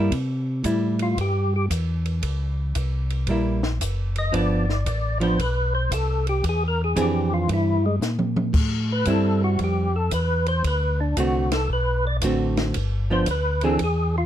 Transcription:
0.00 0.10 G2 medium
0.00 0.11 G3 medium
0.00 0.11 A#3 medium
0.00 0.11 E4 medium
0.11 0.63 C3 medium
0.11 kick soft
0.11 ride medium
0.64 1.16 A2 medium
0.64 1.46 G3 medium
0.64 1.46 E4 medium
0.64 kick soft
0.64 hi-hat pedal soft
0.64 ride medium
0.99 1.19 F4 medium
0.99 ride soft
1.17 1.69 G2 medium
1.17 kick soft
1.17 ride medium
1.21 1.54 G4 medium
1.56 1.66 G4 medium
1.70 2.22 E2 medium
1.70 kick soft
1.70 hi-hat pedal medium
1.70 ride medium
2.05 ride soft
2.22 2.74 C#2 medium
2.22 kick soft
2.22 ride medium
2.75 3.27 C2 medium
2.75 kick soft
2.75 hi-hat pedal medium
2.75 ride medium
3.10 ride soft
3.27 3.79 A#1 medium
3.27 3.60 G3 soft
3.27 3.61 A#3 medium
3.27 3.61 E4 medium
3.27 kick soft
3.27 ride medium
3.63 snare soft
3.80 4.32 F#1 medium
3.80 kick soft
3.80 hi-hat pedal medium
3.80 ride medium
4.16 4.34 D#5 loud
4.16 ride soft
4.32 4.85 G1 medium
4.32 4.64 F3 medium
4.32 4.65 B3 medium
4.32 4.65 D4 medium
4.32 5.18 D5 medium
4.32 kick soft
4.32 ride medium
4.69 snare soft
4.86 5.37 A1 medium
4.86 kick soft
4.86 hi-hat pedal medium
4.86 ride medium
5.20 5.37 F3 medium
5.20 5.38 B3 medium
5.20 5.37 D4 medium
5.20 5.39 C5 medium
5.20 ride soft
5.38 5.90 B1 medium
5.38 5.74 B4 medium
5.38 kick soft
5.38 ride medium
5.75 5.91 C5 medium
5.91 6.42 C2 medium
5.91 6.27 A4 medium
5.91 kick soft
5.91 hi-hat pedal medium
5.91 ride medium
6.27 6.45 G4 medium
6.27 ride soft
6.44 6.95 E2 medium
6.44 kick soft
6.44 ride medium
6.49 6.64 G#4 medium
6.68 6.82 A#4 medium
6.84 6.99 G#4 medium
6.96 7.47 F2 medium
6.96 7.77 E3 medium
6.96 7.77 C4 medium
6.96 7.77 D4 medium
6.96 7.77 G#4 medium
6.96 kick soft
6.96 hi-hat pedal soft
6.96 ride medium
7.02 7.33 G4 medium
7.34 7.50 F4 medium
7.48 8.00 G2 medium
7.48 kick soft
7.48 ride medium
7.53 7.85 E4 medium
7.86 7.96 G#3 medium
8.01 8.52 A#2 medium
8.01 snare soft
8.01 hi-hat pedal medium
8.19 mid tom medium
8.36 mid tom medium
8.53 9.05 A2 medium
8.53 kick medium
8.53 crash medium
8.92 9.08 B4 medium
9.05 9.57 G2 medium
9.05 9.87 G3 medium
9.05 9.88 C4 medium
9.05 9.88 E4 medium
9.05 kick soft
9.05 hi-hat pedal medium
9.05 ride medium
9.10 9.42 A4 medium
9.44 9.60 F#4 medium
9.59 10.10 F2 medium
9.59 kick soft
9.59 ride medium
9.64 9.96 G4 medium
9.96 10.12 A4 medium
10.11 10.63 E2 medium
10.11 10.47 B4 medium
10.11 kick soft
10.11 hi-hat pedal medium
10.11 ride medium
10.46 10.65 C5 loud
10.46 ride soft
10.64 11.15 D2 medium
10.64 11.00 B4 medium
10.64 kick soft
10.64 ride medium
11.00 11.17 D4 medium
11.17 11.68 C2 medium
11.17 11.49 D3 soft
11.17 11.49 A3 medium
11.17 11.49 C4 medium
11.17 11.49 F#4 medium
11.17 11.52 F#4 medium
11.17 kick soft
11.17 hi-hat pedal medium
11.17 ride medium
11.51 11.70 A4 medium
11.51 snare medium
11.51 ride medium
11.69 12.21 B1 medium
11.69 12.05 B4 medium
11.69 kick soft
12.07 12.17 D5 medium
12.21 12.73 A1 medium
12.21 12.76 D3 medium
12.21 12.76 A3 medium
12.21 12.76 C4 medium
12.21 12.76 F#4 medium
12.21 kick soft
12.21 hi-hat pedal medium
12.21 ride medium
12.57 snare medium
12.57 ride soft
12.74 13.25 G1 medium
12.74 kick soft
12.74 ride medium
13.10 13.26 F3 medium
13.10 13.26 B3 medium
13.10 13.27 D4 medium
13.10 13.28 C5 loud
13.26 13.78 D2 medium
13.26 kick soft
13.26 hi-hat pedal medium
13.26 ride medium
13.31 13.63 B4 medium
13.61 13.79 E3 medium
13.61 13.79 C4 medium
13.61 13.79 D4 medium
13.61 13.79 G#4 medium
13.61 13.80 A4 medium
13.61 ride soft
13.79 14.26 E2 medium
13.79 kick soft
13.79 ride medium
13.84 14.16 G#4 medium
14.18 14.26 F4 medium

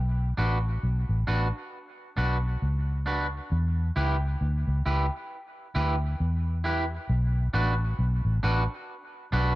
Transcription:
0.00 0.32 B1 loud
0.37 0.76 A1 medium
0.37 0.57 D4 medium
0.37 0.57 F#4 medium
0.37 0.58 B4 medium
0.83 1.05 B1 medium
1.09 1.25 A1 medium
1.27 1.50 A1 medium
1.27 1.47 D4 medium
1.27 1.47 F#4 medium
1.27 1.47 B4 medium
2.17 2.56 B1 medium
2.17 2.36 D4 medium
2.17 2.37 F#4 medium
2.17 2.37 B4 medium
2.62 3.39 C#2 medium
3.06 3.26 D4 medium
3.06 3.26 F#4 medium
3.06 3.26 B4 medium
3.52 3.90 E2 loud
3.96 4.35 C#2 medium
3.96 4.15 E4 medium
3.96 4.16 G4 medium
3.96 4.16 B4 medium
4.41 4.63 D2 medium
4.67 4.83 C#2 medium
4.86 5.08 C#2 medium
4.86 5.05 E4 medium
4.86 5.05 G4 medium
4.86 5.06 B4 medium
5.75 6.14 D2 medium
5.75 5.94 E4 medium
5.75 5.95 G4 medium
5.75 5.95 B4 medium
6.20 6.97 E2 medium
6.64 6.84 E4 medium
6.64 6.84 G4 medium
6.64 6.84 B4 medium
7.09 7.48 B1 loud
7.53 7.92 A1 medium
7.53 7.73 D4 medium
7.53 7.73 F#4 medium
7.53 7.74 B4 medium
7.99 8.21 B1 medium
8.25 8.41 A1 medium
8.43 8.66 A1 medium
8.43 8.63 D4 medium
8.43 8.63 F#4 medium
8.43 8.63 B4 loud
9.32 9.55 B1 medium
9.32 9.52 D4 medium
9.32 9.52 F#4 medium
9.32 9.53 B4 medium

